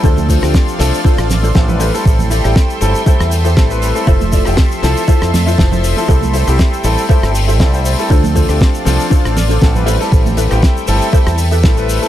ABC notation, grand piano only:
X:1
M:4/4
L:1/16
Q:"Swing 16ths" 1/4=119
K:Am
V:1 name="Grand piano"
[F,A,CDA]3 [F,A,CDG]3 [F,A,CDA] z [F,A,CDA]2 z2 [F,A,CDA] [G,A,CEB]2 [G,A,CEA] | [G,A,CEA]3 [G,A,CEG]3 [G,A,CEA] z [G,A,CEA]2 z2 [G,A,CEA] [G,A,CEB]2 [G,A,CEA] | [F,A,CAe]3 [F,A,CGe]3 [F,A,CEA] z [F,A,CEA]2 z2 [F,A,CEA] [F,A,CEc]2 [F,A,CEA] | [G,A,CEA]3 [G,A,CEG]3 [G,A,CEA] z [G,A,CEA]2 z2 [G,A,CEA] [G,A,CEc]2 [G,A,CEA] |
[F,A,CDA]3 [F,A,CDG]3 [F,A,CDA] z [A,CDA]2 z2 [F,A,CDA] [G,A,CEB]2 [G,A,CEA] | [G,A,CEA]3 [G,A,CEG]3 [G,A,CEA] z [G,A,CEA]2 z2 [G,A,CEA] [G,A,CEB]2 [G,A,CEA] |]